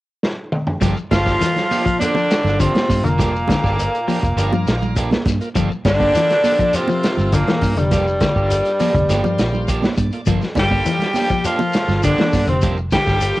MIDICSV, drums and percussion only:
0, 0, Header, 1, 3, 480
1, 0, Start_track
1, 0, Key_signature, -2, "minor"
1, 0, Tempo, 590551
1, 664, Time_signature, 4, 2, 24, 8
1, 10892, End_track
2, 0, Start_track
2, 0, Title_t, "Shekere"
2, 665, Note_on_c, 9, 82, 92
2, 746, Note_off_c, 9, 82, 0
2, 785, Note_on_c, 9, 82, 30
2, 866, Note_off_c, 9, 82, 0
2, 910, Note_on_c, 9, 82, 70
2, 991, Note_off_c, 9, 82, 0
2, 1027, Note_on_c, 9, 82, 28
2, 1109, Note_off_c, 9, 82, 0
2, 1152, Note_on_c, 9, 82, 86
2, 1233, Note_off_c, 9, 82, 0
2, 1278, Note_on_c, 9, 82, 31
2, 1359, Note_off_c, 9, 82, 0
2, 1398, Note_on_c, 9, 82, 69
2, 1479, Note_off_c, 9, 82, 0
2, 1519, Note_on_c, 9, 82, 30
2, 1600, Note_off_c, 9, 82, 0
2, 1636, Note_on_c, 9, 82, 87
2, 1717, Note_off_c, 9, 82, 0
2, 1764, Note_on_c, 9, 82, 30
2, 1845, Note_off_c, 9, 82, 0
2, 1876, Note_on_c, 9, 82, 75
2, 1958, Note_off_c, 9, 82, 0
2, 1999, Note_on_c, 9, 82, 29
2, 2081, Note_off_c, 9, 82, 0
2, 2112, Note_on_c, 9, 82, 89
2, 2193, Note_off_c, 9, 82, 0
2, 2232, Note_on_c, 9, 82, 30
2, 2313, Note_off_c, 9, 82, 0
2, 2358, Note_on_c, 9, 82, 74
2, 2439, Note_off_c, 9, 82, 0
2, 2482, Note_on_c, 9, 82, 30
2, 2563, Note_off_c, 9, 82, 0
2, 2602, Note_on_c, 9, 82, 87
2, 2683, Note_off_c, 9, 82, 0
2, 2728, Note_on_c, 9, 82, 30
2, 2809, Note_off_c, 9, 82, 0
2, 2846, Note_on_c, 9, 82, 69
2, 2927, Note_off_c, 9, 82, 0
2, 2966, Note_on_c, 9, 82, 30
2, 3047, Note_off_c, 9, 82, 0
2, 3083, Note_on_c, 9, 82, 87
2, 3164, Note_off_c, 9, 82, 0
2, 3212, Note_on_c, 9, 82, 30
2, 3293, Note_off_c, 9, 82, 0
2, 3320, Note_on_c, 9, 82, 71
2, 3402, Note_off_c, 9, 82, 0
2, 3443, Note_on_c, 9, 82, 30
2, 3525, Note_off_c, 9, 82, 0
2, 3559, Note_on_c, 9, 82, 87
2, 3640, Note_off_c, 9, 82, 0
2, 3678, Note_on_c, 9, 82, 29
2, 3759, Note_off_c, 9, 82, 0
2, 3795, Note_on_c, 9, 82, 75
2, 3876, Note_off_c, 9, 82, 0
2, 3917, Note_on_c, 9, 82, 31
2, 3998, Note_off_c, 9, 82, 0
2, 4035, Note_on_c, 9, 82, 83
2, 4116, Note_off_c, 9, 82, 0
2, 4163, Note_on_c, 9, 82, 30
2, 4244, Note_off_c, 9, 82, 0
2, 4289, Note_on_c, 9, 82, 72
2, 4370, Note_off_c, 9, 82, 0
2, 4402, Note_on_c, 9, 82, 29
2, 4483, Note_off_c, 9, 82, 0
2, 4519, Note_on_c, 9, 82, 95
2, 4600, Note_off_c, 9, 82, 0
2, 4640, Note_on_c, 9, 82, 29
2, 4721, Note_off_c, 9, 82, 0
2, 4763, Note_on_c, 9, 82, 75
2, 4844, Note_off_c, 9, 82, 0
2, 4881, Note_on_c, 9, 82, 30
2, 4962, Note_off_c, 9, 82, 0
2, 4994, Note_on_c, 9, 82, 84
2, 5076, Note_off_c, 9, 82, 0
2, 5117, Note_on_c, 9, 82, 29
2, 5199, Note_off_c, 9, 82, 0
2, 5235, Note_on_c, 9, 82, 69
2, 5316, Note_off_c, 9, 82, 0
2, 5359, Note_on_c, 9, 82, 30
2, 5440, Note_off_c, 9, 82, 0
2, 5475, Note_on_c, 9, 82, 83
2, 5556, Note_off_c, 9, 82, 0
2, 5602, Note_on_c, 9, 82, 29
2, 5683, Note_off_c, 9, 82, 0
2, 5723, Note_on_c, 9, 82, 77
2, 5804, Note_off_c, 9, 82, 0
2, 5846, Note_on_c, 9, 82, 28
2, 5927, Note_off_c, 9, 82, 0
2, 5962, Note_on_c, 9, 82, 88
2, 6044, Note_off_c, 9, 82, 0
2, 6086, Note_on_c, 9, 82, 28
2, 6167, Note_off_c, 9, 82, 0
2, 6202, Note_on_c, 9, 82, 68
2, 6284, Note_off_c, 9, 82, 0
2, 6323, Note_on_c, 9, 82, 30
2, 6404, Note_off_c, 9, 82, 0
2, 6441, Note_on_c, 9, 82, 86
2, 6522, Note_off_c, 9, 82, 0
2, 6564, Note_on_c, 9, 82, 31
2, 6645, Note_off_c, 9, 82, 0
2, 6678, Note_on_c, 9, 82, 70
2, 6760, Note_off_c, 9, 82, 0
2, 6801, Note_on_c, 9, 82, 29
2, 6882, Note_off_c, 9, 82, 0
2, 6916, Note_on_c, 9, 82, 90
2, 6998, Note_off_c, 9, 82, 0
2, 7038, Note_on_c, 9, 82, 30
2, 7120, Note_off_c, 9, 82, 0
2, 7154, Note_on_c, 9, 82, 73
2, 7235, Note_off_c, 9, 82, 0
2, 7273, Note_on_c, 9, 82, 29
2, 7354, Note_off_c, 9, 82, 0
2, 7393, Note_on_c, 9, 82, 82
2, 7474, Note_off_c, 9, 82, 0
2, 7518, Note_on_c, 9, 82, 29
2, 7599, Note_off_c, 9, 82, 0
2, 7633, Note_on_c, 9, 82, 75
2, 7714, Note_off_c, 9, 82, 0
2, 7754, Note_on_c, 9, 82, 31
2, 7835, Note_off_c, 9, 82, 0
2, 7871, Note_on_c, 9, 82, 90
2, 7953, Note_off_c, 9, 82, 0
2, 7993, Note_on_c, 9, 82, 29
2, 8074, Note_off_c, 9, 82, 0
2, 8106, Note_on_c, 9, 82, 72
2, 8187, Note_off_c, 9, 82, 0
2, 8225, Note_on_c, 9, 82, 30
2, 8306, Note_off_c, 9, 82, 0
2, 8341, Note_on_c, 9, 82, 88
2, 8423, Note_off_c, 9, 82, 0
2, 8467, Note_on_c, 9, 82, 30
2, 8549, Note_off_c, 9, 82, 0
2, 8584, Note_on_c, 9, 82, 70
2, 8666, Note_off_c, 9, 82, 0
2, 8707, Note_on_c, 9, 82, 29
2, 8788, Note_off_c, 9, 82, 0
2, 8824, Note_on_c, 9, 82, 86
2, 8905, Note_off_c, 9, 82, 0
2, 8948, Note_on_c, 9, 82, 28
2, 9029, Note_off_c, 9, 82, 0
2, 9064, Note_on_c, 9, 82, 72
2, 9145, Note_off_c, 9, 82, 0
2, 9187, Note_on_c, 9, 82, 30
2, 9268, Note_off_c, 9, 82, 0
2, 9303, Note_on_c, 9, 82, 89
2, 9384, Note_off_c, 9, 82, 0
2, 9423, Note_on_c, 9, 82, 30
2, 9504, Note_off_c, 9, 82, 0
2, 9534, Note_on_c, 9, 82, 71
2, 9616, Note_off_c, 9, 82, 0
2, 9659, Note_on_c, 9, 82, 30
2, 9741, Note_off_c, 9, 82, 0
2, 9779, Note_on_c, 9, 82, 86
2, 9860, Note_off_c, 9, 82, 0
2, 9897, Note_on_c, 9, 82, 28
2, 9978, Note_off_c, 9, 82, 0
2, 10020, Note_on_c, 9, 82, 73
2, 10102, Note_off_c, 9, 82, 0
2, 10133, Note_on_c, 9, 82, 31
2, 10215, Note_off_c, 9, 82, 0
2, 10255, Note_on_c, 9, 82, 91
2, 10336, Note_off_c, 9, 82, 0
2, 10377, Note_on_c, 9, 82, 31
2, 10458, Note_off_c, 9, 82, 0
2, 10495, Note_on_c, 9, 82, 74
2, 10576, Note_off_c, 9, 82, 0
2, 10615, Note_on_c, 9, 82, 30
2, 10696, Note_off_c, 9, 82, 0
2, 10734, Note_on_c, 9, 82, 89
2, 10816, Note_off_c, 9, 82, 0
2, 10858, Note_on_c, 9, 82, 31
2, 10892, Note_off_c, 9, 82, 0
2, 10892, End_track
3, 0, Start_track
3, 0, Title_t, "Drums"
3, 192, Note_on_c, 9, 38, 59
3, 273, Note_off_c, 9, 38, 0
3, 426, Note_on_c, 9, 47, 77
3, 507, Note_off_c, 9, 47, 0
3, 545, Note_on_c, 9, 43, 81
3, 626, Note_off_c, 9, 43, 0
3, 660, Note_on_c, 9, 64, 82
3, 664, Note_on_c, 9, 36, 97
3, 666, Note_on_c, 9, 42, 71
3, 675, Note_on_c, 9, 38, 29
3, 741, Note_off_c, 9, 64, 0
3, 745, Note_off_c, 9, 36, 0
3, 748, Note_off_c, 9, 42, 0
3, 757, Note_off_c, 9, 38, 0
3, 905, Note_on_c, 9, 63, 92
3, 906, Note_on_c, 9, 36, 71
3, 910, Note_on_c, 9, 42, 52
3, 918, Note_on_c, 9, 38, 70
3, 986, Note_off_c, 9, 63, 0
3, 987, Note_off_c, 9, 36, 0
3, 991, Note_off_c, 9, 42, 0
3, 1000, Note_off_c, 9, 38, 0
3, 1027, Note_on_c, 9, 36, 62
3, 1039, Note_on_c, 9, 38, 25
3, 1108, Note_off_c, 9, 36, 0
3, 1120, Note_off_c, 9, 38, 0
3, 1147, Note_on_c, 9, 42, 77
3, 1155, Note_on_c, 9, 38, 30
3, 1228, Note_off_c, 9, 42, 0
3, 1237, Note_off_c, 9, 38, 0
3, 1267, Note_on_c, 9, 42, 34
3, 1269, Note_on_c, 9, 64, 73
3, 1276, Note_on_c, 9, 38, 28
3, 1349, Note_off_c, 9, 42, 0
3, 1350, Note_off_c, 9, 64, 0
3, 1358, Note_off_c, 9, 38, 0
3, 1387, Note_on_c, 9, 46, 70
3, 1390, Note_on_c, 9, 63, 84
3, 1468, Note_off_c, 9, 46, 0
3, 1471, Note_off_c, 9, 63, 0
3, 1509, Note_on_c, 9, 36, 63
3, 1512, Note_on_c, 9, 42, 33
3, 1590, Note_off_c, 9, 36, 0
3, 1593, Note_off_c, 9, 42, 0
3, 1624, Note_on_c, 9, 63, 67
3, 1631, Note_on_c, 9, 42, 74
3, 1706, Note_off_c, 9, 63, 0
3, 1712, Note_off_c, 9, 42, 0
3, 1745, Note_on_c, 9, 63, 96
3, 1827, Note_off_c, 9, 63, 0
3, 1873, Note_on_c, 9, 42, 58
3, 1882, Note_on_c, 9, 38, 77
3, 1954, Note_off_c, 9, 42, 0
3, 1963, Note_off_c, 9, 38, 0
3, 1987, Note_on_c, 9, 64, 88
3, 2005, Note_on_c, 9, 38, 27
3, 2068, Note_off_c, 9, 64, 0
3, 2087, Note_off_c, 9, 38, 0
3, 2112, Note_on_c, 9, 36, 64
3, 2117, Note_on_c, 9, 42, 73
3, 2194, Note_off_c, 9, 36, 0
3, 2198, Note_off_c, 9, 42, 0
3, 2233, Note_on_c, 9, 63, 80
3, 2235, Note_on_c, 9, 42, 34
3, 2244, Note_on_c, 9, 38, 68
3, 2314, Note_off_c, 9, 63, 0
3, 2316, Note_off_c, 9, 42, 0
3, 2325, Note_off_c, 9, 38, 0
3, 2348, Note_on_c, 9, 63, 75
3, 2353, Note_on_c, 9, 36, 69
3, 2355, Note_on_c, 9, 46, 68
3, 2429, Note_off_c, 9, 63, 0
3, 2434, Note_off_c, 9, 36, 0
3, 2436, Note_off_c, 9, 46, 0
3, 2481, Note_on_c, 9, 42, 32
3, 2563, Note_off_c, 9, 42, 0
3, 2588, Note_on_c, 9, 64, 83
3, 2595, Note_on_c, 9, 36, 90
3, 2598, Note_on_c, 9, 42, 72
3, 2607, Note_on_c, 9, 38, 30
3, 2670, Note_off_c, 9, 64, 0
3, 2676, Note_off_c, 9, 36, 0
3, 2679, Note_off_c, 9, 42, 0
3, 2688, Note_off_c, 9, 38, 0
3, 2825, Note_on_c, 9, 63, 97
3, 2835, Note_on_c, 9, 36, 72
3, 2839, Note_on_c, 9, 42, 55
3, 2848, Note_on_c, 9, 38, 73
3, 2906, Note_off_c, 9, 63, 0
3, 2917, Note_off_c, 9, 36, 0
3, 2920, Note_off_c, 9, 42, 0
3, 2929, Note_off_c, 9, 38, 0
3, 2957, Note_on_c, 9, 36, 68
3, 2967, Note_on_c, 9, 38, 27
3, 3038, Note_off_c, 9, 36, 0
3, 3048, Note_off_c, 9, 38, 0
3, 3080, Note_on_c, 9, 42, 71
3, 3161, Note_off_c, 9, 42, 0
3, 3206, Note_on_c, 9, 42, 32
3, 3287, Note_off_c, 9, 42, 0
3, 3314, Note_on_c, 9, 63, 80
3, 3323, Note_on_c, 9, 46, 67
3, 3396, Note_off_c, 9, 63, 0
3, 3405, Note_off_c, 9, 46, 0
3, 3438, Note_on_c, 9, 36, 67
3, 3442, Note_on_c, 9, 42, 31
3, 3519, Note_off_c, 9, 36, 0
3, 3524, Note_off_c, 9, 42, 0
3, 3558, Note_on_c, 9, 42, 67
3, 3639, Note_off_c, 9, 42, 0
3, 3676, Note_on_c, 9, 63, 92
3, 3758, Note_off_c, 9, 63, 0
3, 3798, Note_on_c, 9, 42, 53
3, 3807, Note_on_c, 9, 38, 73
3, 3879, Note_off_c, 9, 42, 0
3, 3888, Note_off_c, 9, 38, 0
3, 3919, Note_on_c, 9, 64, 93
3, 4000, Note_off_c, 9, 64, 0
3, 4033, Note_on_c, 9, 42, 67
3, 4036, Note_on_c, 9, 36, 63
3, 4115, Note_off_c, 9, 42, 0
3, 4118, Note_off_c, 9, 36, 0
3, 4154, Note_on_c, 9, 63, 89
3, 4167, Note_on_c, 9, 38, 67
3, 4236, Note_off_c, 9, 63, 0
3, 4248, Note_off_c, 9, 38, 0
3, 4272, Note_on_c, 9, 42, 54
3, 4273, Note_on_c, 9, 63, 73
3, 4275, Note_on_c, 9, 36, 72
3, 4281, Note_on_c, 9, 38, 30
3, 4353, Note_off_c, 9, 42, 0
3, 4354, Note_off_c, 9, 63, 0
3, 4357, Note_off_c, 9, 36, 0
3, 4362, Note_off_c, 9, 38, 0
3, 4398, Note_on_c, 9, 42, 32
3, 4479, Note_off_c, 9, 42, 0
3, 4511, Note_on_c, 9, 42, 67
3, 4516, Note_on_c, 9, 36, 92
3, 4517, Note_on_c, 9, 64, 86
3, 4592, Note_off_c, 9, 42, 0
3, 4597, Note_off_c, 9, 36, 0
3, 4598, Note_off_c, 9, 64, 0
3, 4753, Note_on_c, 9, 42, 53
3, 4754, Note_on_c, 9, 63, 93
3, 4756, Note_on_c, 9, 36, 71
3, 4762, Note_on_c, 9, 38, 73
3, 4835, Note_off_c, 9, 42, 0
3, 4835, Note_off_c, 9, 63, 0
3, 4837, Note_off_c, 9, 36, 0
3, 4844, Note_off_c, 9, 38, 0
3, 4878, Note_on_c, 9, 36, 63
3, 4880, Note_on_c, 9, 63, 67
3, 4959, Note_off_c, 9, 36, 0
3, 4961, Note_off_c, 9, 63, 0
3, 4998, Note_on_c, 9, 42, 72
3, 5007, Note_on_c, 9, 38, 30
3, 5080, Note_off_c, 9, 42, 0
3, 5089, Note_off_c, 9, 38, 0
3, 5118, Note_on_c, 9, 42, 34
3, 5127, Note_on_c, 9, 38, 27
3, 5200, Note_off_c, 9, 42, 0
3, 5209, Note_off_c, 9, 38, 0
3, 5233, Note_on_c, 9, 63, 83
3, 5234, Note_on_c, 9, 46, 69
3, 5314, Note_off_c, 9, 63, 0
3, 5315, Note_off_c, 9, 46, 0
3, 5356, Note_on_c, 9, 42, 32
3, 5358, Note_on_c, 9, 36, 69
3, 5437, Note_off_c, 9, 42, 0
3, 5440, Note_off_c, 9, 36, 0
3, 5472, Note_on_c, 9, 42, 73
3, 5553, Note_off_c, 9, 42, 0
3, 5588, Note_on_c, 9, 63, 98
3, 5669, Note_off_c, 9, 63, 0
3, 5717, Note_on_c, 9, 42, 60
3, 5726, Note_on_c, 9, 38, 72
3, 5798, Note_off_c, 9, 42, 0
3, 5807, Note_off_c, 9, 38, 0
3, 5832, Note_on_c, 9, 64, 88
3, 5913, Note_off_c, 9, 64, 0
3, 5953, Note_on_c, 9, 42, 73
3, 5957, Note_on_c, 9, 36, 67
3, 6035, Note_off_c, 9, 42, 0
3, 6038, Note_off_c, 9, 36, 0
3, 6075, Note_on_c, 9, 42, 33
3, 6076, Note_on_c, 9, 63, 81
3, 6084, Note_on_c, 9, 38, 64
3, 6156, Note_off_c, 9, 42, 0
3, 6157, Note_off_c, 9, 63, 0
3, 6165, Note_off_c, 9, 38, 0
3, 6189, Note_on_c, 9, 46, 67
3, 6194, Note_on_c, 9, 63, 71
3, 6195, Note_on_c, 9, 36, 67
3, 6270, Note_off_c, 9, 46, 0
3, 6276, Note_off_c, 9, 36, 0
3, 6276, Note_off_c, 9, 63, 0
3, 6311, Note_on_c, 9, 42, 34
3, 6393, Note_off_c, 9, 42, 0
3, 6431, Note_on_c, 9, 42, 70
3, 6433, Note_on_c, 9, 64, 81
3, 6435, Note_on_c, 9, 36, 92
3, 6440, Note_on_c, 9, 38, 29
3, 6512, Note_off_c, 9, 42, 0
3, 6514, Note_off_c, 9, 64, 0
3, 6516, Note_off_c, 9, 36, 0
3, 6521, Note_off_c, 9, 38, 0
3, 6669, Note_on_c, 9, 42, 55
3, 6674, Note_on_c, 9, 36, 73
3, 6677, Note_on_c, 9, 63, 91
3, 6678, Note_on_c, 9, 38, 73
3, 6750, Note_off_c, 9, 42, 0
3, 6755, Note_off_c, 9, 36, 0
3, 6758, Note_off_c, 9, 63, 0
3, 6759, Note_off_c, 9, 38, 0
3, 6795, Note_on_c, 9, 36, 62
3, 6877, Note_off_c, 9, 36, 0
3, 6912, Note_on_c, 9, 42, 74
3, 6993, Note_off_c, 9, 42, 0
3, 7031, Note_on_c, 9, 42, 32
3, 7112, Note_off_c, 9, 42, 0
3, 7148, Note_on_c, 9, 46, 66
3, 7155, Note_on_c, 9, 63, 82
3, 7229, Note_off_c, 9, 46, 0
3, 7236, Note_off_c, 9, 63, 0
3, 7267, Note_on_c, 9, 42, 32
3, 7271, Note_on_c, 9, 36, 66
3, 7348, Note_off_c, 9, 42, 0
3, 7353, Note_off_c, 9, 36, 0
3, 7392, Note_on_c, 9, 42, 68
3, 7394, Note_on_c, 9, 63, 68
3, 7401, Note_on_c, 9, 38, 29
3, 7473, Note_off_c, 9, 42, 0
3, 7475, Note_off_c, 9, 63, 0
3, 7482, Note_off_c, 9, 38, 0
3, 7512, Note_on_c, 9, 63, 96
3, 7593, Note_off_c, 9, 63, 0
3, 7628, Note_on_c, 9, 42, 53
3, 7637, Note_on_c, 9, 38, 74
3, 7709, Note_off_c, 9, 42, 0
3, 7718, Note_off_c, 9, 38, 0
3, 7749, Note_on_c, 9, 64, 88
3, 7830, Note_off_c, 9, 64, 0
3, 7870, Note_on_c, 9, 42, 67
3, 7871, Note_on_c, 9, 36, 62
3, 7952, Note_off_c, 9, 36, 0
3, 7952, Note_off_c, 9, 42, 0
3, 7986, Note_on_c, 9, 63, 82
3, 7999, Note_on_c, 9, 38, 67
3, 8067, Note_off_c, 9, 63, 0
3, 8080, Note_off_c, 9, 38, 0
3, 8107, Note_on_c, 9, 63, 72
3, 8109, Note_on_c, 9, 42, 51
3, 8110, Note_on_c, 9, 36, 68
3, 8188, Note_off_c, 9, 63, 0
3, 8190, Note_off_c, 9, 42, 0
3, 8191, Note_off_c, 9, 36, 0
3, 8230, Note_on_c, 9, 42, 30
3, 8312, Note_off_c, 9, 42, 0
3, 8347, Note_on_c, 9, 42, 68
3, 8348, Note_on_c, 9, 64, 85
3, 8349, Note_on_c, 9, 36, 99
3, 8428, Note_off_c, 9, 42, 0
3, 8429, Note_off_c, 9, 64, 0
3, 8430, Note_off_c, 9, 36, 0
3, 8479, Note_on_c, 9, 38, 28
3, 8560, Note_off_c, 9, 38, 0
3, 8578, Note_on_c, 9, 63, 93
3, 8588, Note_on_c, 9, 36, 70
3, 8589, Note_on_c, 9, 42, 48
3, 8598, Note_on_c, 9, 38, 73
3, 8659, Note_off_c, 9, 63, 0
3, 8669, Note_off_c, 9, 36, 0
3, 8671, Note_off_c, 9, 42, 0
3, 8679, Note_off_c, 9, 38, 0
3, 8701, Note_on_c, 9, 63, 74
3, 8709, Note_on_c, 9, 36, 65
3, 8783, Note_off_c, 9, 63, 0
3, 8790, Note_off_c, 9, 36, 0
3, 8829, Note_on_c, 9, 42, 66
3, 8910, Note_off_c, 9, 42, 0
3, 8935, Note_on_c, 9, 64, 73
3, 8949, Note_on_c, 9, 42, 32
3, 8958, Note_on_c, 9, 38, 26
3, 9016, Note_off_c, 9, 64, 0
3, 9030, Note_off_c, 9, 42, 0
3, 9039, Note_off_c, 9, 38, 0
3, 9056, Note_on_c, 9, 63, 81
3, 9067, Note_on_c, 9, 46, 67
3, 9138, Note_off_c, 9, 63, 0
3, 9148, Note_off_c, 9, 46, 0
3, 9186, Note_on_c, 9, 42, 35
3, 9187, Note_on_c, 9, 36, 66
3, 9267, Note_off_c, 9, 42, 0
3, 9268, Note_off_c, 9, 36, 0
3, 9302, Note_on_c, 9, 42, 71
3, 9383, Note_off_c, 9, 42, 0
3, 9421, Note_on_c, 9, 63, 94
3, 9502, Note_off_c, 9, 63, 0
3, 9540, Note_on_c, 9, 42, 55
3, 9549, Note_on_c, 9, 38, 75
3, 9621, Note_off_c, 9, 42, 0
3, 9630, Note_off_c, 9, 38, 0
3, 9660, Note_on_c, 9, 64, 85
3, 9675, Note_on_c, 9, 38, 26
3, 9742, Note_off_c, 9, 64, 0
3, 9757, Note_off_c, 9, 38, 0
3, 9780, Note_on_c, 9, 42, 68
3, 9784, Note_on_c, 9, 36, 67
3, 9861, Note_off_c, 9, 42, 0
3, 9865, Note_off_c, 9, 36, 0
3, 9903, Note_on_c, 9, 63, 85
3, 9905, Note_on_c, 9, 42, 34
3, 9914, Note_on_c, 9, 38, 68
3, 9984, Note_off_c, 9, 63, 0
3, 9987, Note_off_c, 9, 42, 0
3, 9996, Note_off_c, 9, 38, 0
3, 10024, Note_on_c, 9, 36, 68
3, 10024, Note_on_c, 9, 46, 67
3, 10025, Note_on_c, 9, 63, 74
3, 10033, Note_on_c, 9, 38, 33
3, 10105, Note_off_c, 9, 46, 0
3, 10106, Note_off_c, 9, 36, 0
3, 10106, Note_off_c, 9, 63, 0
3, 10114, Note_off_c, 9, 38, 0
3, 10144, Note_on_c, 9, 42, 34
3, 10226, Note_off_c, 9, 42, 0
3, 10262, Note_on_c, 9, 42, 71
3, 10264, Note_on_c, 9, 36, 92
3, 10264, Note_on_c, 9, 64, 81
3, 10344, Note_off_c, 9, 42, 0
3, 10345, Note_off_c, 9, 36, 0
3, 10345, Note_off_c, 9, 64, 0
3, 10502, Note_on_c, 9, 42, 54
3, 10503, Note_on_c, 9, 36, 73
3, 10506, Note_on_c, 9, 63, 92
3, 10511, Note_on_c, 9, 38, 70
3, 10583, Note_off_c, 9, 42, 0
3, 10584, Note_off_c, 9, 36, 0
3, 10587, Note_off_c, 9, 63, 0
3, 10592, Note_off_c, 9, 38, 0
3, 10624, Note_on_c, 9, 36, 62
3, 10634, Note_on_c, 9, 38, 26
3, 10706, Note_off_c, 9, 36, 0
3, 10715, Note_off_c, 9, 38, 0
3, 10742, Note_on_c, 9, 42, 74
3, 10824, Note_off_c, 9, 42, 0
3, 10892, End_track
0, 0, End_of_file